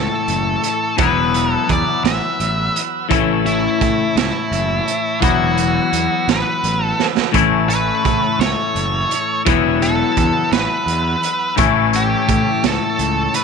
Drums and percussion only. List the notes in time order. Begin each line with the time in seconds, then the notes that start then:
0.28 closed hi-hat
0.63 closed hi-hat
0.98 kick, closed hi-hat
1.34 closed hi-hat
1.69 kick, closed hi-hat
2.05 snare, closed hi-hat
2.40 closed hi-hat
2.76 closed hi-hat
3.11 kick, closed hi-hat
3.46 closed hi-hat
3.81 kick, closed hi-hat
4.17 snare, closed hi-hat
4.52 closed hi-hat
4.88 closed hi-hat
5.22 kick, closed hi-hat
5.58 closed hi-hat
5.93 closed hi-hat
6.29 snare, closed hi-hat
6.64 closed hi-hat
6.99 snare
7.17 snare
7.34 kick, closed hi-hat
7.70 closed hi-hat
8.05 kick, closed hi-hat
8.41 snare, closed hi-hat
8.76 closed hi-hat
9.11 closed hi-hat
9.46 kick, closed hi-hat
9.82 closed hi-hat
10.17 kick, closed hi-hat
10.52 snare, closed hi-hat
10.88 closed hi-hat
11.23 closed hi-hat
11.57 kick, closed hi-hat
11.93 closed hi-hat
12.29 kick, closed hi-hat
12.64 snare, closed hi-hat
12.99 closed hi-hat
13.34 closed hi-hat